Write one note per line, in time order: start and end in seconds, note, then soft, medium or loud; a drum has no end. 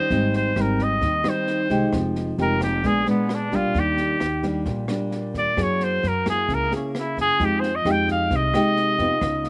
0.00 0.35 C5 medium
0.10 0.53 G#1 medium
0.10 1.00 G#2 soft
0.10 0.53 G3 soft
0.10 0.53 C4 soft
0.10 0.53 D#4 medium
0.10 kick medium
0.10 snare soft
0.34 0.63 C5 medium
0.34 snare soft
0.56 0.99 G#1 medium
0.56 1.21 G3 medium
0.56 1.21 C4 soft
0.56 1.21 D#4 medium
0.56 cross-stick medium
0.56 snare soft
0.61 0.85 A#4 medium
0.79 kick soft
0.79 snare soft
0.83 1.30 D#5 medium
1.01 1.23 D#2 medium
1.01 1.91 D#3 soft
1.01 kick medium
1.01 snare soft
1.24 1.66 G3 medium
1.24 1.67 C4 medium
1.24 1.67 D#4 medium
1.24 cross-stick medium
1.24 snare soft
1.29 1.95 C5 medium
1.47 snare soft
1.70 1.81 C2 medium
1.70 2.35 G#3 medium
1.70 2.35 D#4 medium
1.70 2.35 G4 medium
1.70 kick soft
1.70 snare soft
1.93 2.35 F1 medium
1.93 2.82 F3 medium
1.93 kick medium
1.93 cross-stick medium
1.93 snare soft
2.15 snare soft
2.38 2.81 F1 medium
2.38 2.82 G#3 medium
2.38 2.82 D#4 medium
2.38 2.83 G4 medium
2.38 2.62 A#4 medium
2.38 snare soft
2.61 2.88 G4 medium
2.61 kick soft
2.61 cross-stick medium
2.61 snare soft
2.83 3.05 A#1 medium
2.83 3.73 A#2 medium
2.83 3.03 G#3 medium
2.83 3.03 B3 medium
2.83 3.03 D4 medium
2.83 3.08 G#4 medium
2.83 kick medium
2.83 snare soft
3.06 3.49 G#3 medium
3.06 3.49 B3 medium
3.06 3.36 B3 medium
3.06 3.49 D4 medium
3.06 snare soft
3.29 cross-stick medium
3.29 snare soft
3.34 3.57 D4 medium
3.52 3.63 A#1 medium
3.52 4.17 G3 medium
3.52 4.17 A#3 medium
3.52 4.17 D4 medium
3.52 3.81 F4 medium
3.52 kick soft
3.52 snare soft
3.74 4.17 D#2 medium
3.74 4.64 D#3 soft
3.74 kick medium
3.74 snare soft
3.79 4.46 G4 medium
3.97 snare soft
4.20 4.63 D#2 medium
4.20 cross-stick medium
4.20 snare soft
4.43 4.85 G3 medium
4.43 4.86 A#3 medium
4.43 4.86 D4 medium
4.43 kick soft
4.43 snare soft
4.66 4.87 A#1 medium
4.66 5.55 A#2 medium
4.66 kick medium
4.66 snare soft
4.88 5.54 G3 medium
4.88 5.54 A#3 medium
4.88 5.54 D4 medium
4.88 cross-stick medium
4.88 snare soft
5.11 snare soft
5.34 5.45 D#2 medium
5.34 kick soft
5.34 snare soft
5.38 5.64 D5 medium
5.57 6.00 F#2 medium
5.57 6.46 F#3 medium
5.57 6.03 A#3 medium
5.57 6.03 E4 medium
5.57 6.03 G#4 medium
5.57 kick medium
5.57 cross-stick medium
5.57 snare soft
5.62 5.85 C#5 medium
5.80 6.09 C5 medium
5.80 snare soft
6.03 6.46 F#2 medium
6.03 snare soft
6.08 6.28 A#4 medium
6.26 6.68 A#3 medium
6.26 6.68 E4 medium
6.26 6.68 G#4 medium
6.26 kick soft
6.26 cross-stick medium
6.26 snare soft
6.30 6.56 G#4 medium
6.49 6.70 C#2 medium
6.49 7.38 C#3 medium
6.49 kick medium
6.49 snare soft
6.54 6.74 A#4 medium
6.72 7.36 A#3 medium
6.72 7.36 E4 medium
6.72 7.37 G#4 medium
6.72 snare soft
6.76 6.92 C#4 soft
6.95 cross-stick medium
6.95 snare soft
6.99 7.19 E4 medium
7.17 7.28 F#2 medium
7.17 kick soft
7.17 snare soft
7.21 7.46 G#4 loud
7.40 7.82 F2 medium
7.40 8.29 F3 medium
7.40 7.69 G#3 medium
7.40 7.69 D#4 medium
7.40 7.70 G4 medium
7.40 kick medium
7.40 snare soft
7.45 7.62 G4 medium
7.60 7.77 C5 medium
7.60 snare soft
7.75 7.93 D#5 medium
7.85 8.28 F2 medium
7.85 8.50 G#3 soft
7.85 8.50 D#4 medium
7.85 8.51 G4 medium
7.85 cross-stick medium
7.85 snare soft
7.91 8.11 G5 loud
8.08 8.37 F5 medium
8.08 kick soft
8.08 snare soft
8.31 8.52 C2 medium
8.31 9.20 C3 medium
8.31 kick medium
8.31 snare soft
8.36 9.49 D#5 loud
8.54 8.96 G#3 medium
8.54 8.96 D#4 medium
8.54 8.96 G4 medium
8.54 cross-stick medium
8.54 snare soft
8.76 snare soft
8.99 9.10 F2 medium
8.99 9.49 B3 medium
8.99 9.49 D#4 medium
8.99 9.49 F4 medium
8.99 kick soft
8.99 snare soft
9.21 9.49 C#2 loud
9.21 9.49 C#3 medium
9.21 kick medium
9.21 cross-stick medium
9.21 snare soft
9.44 snare soft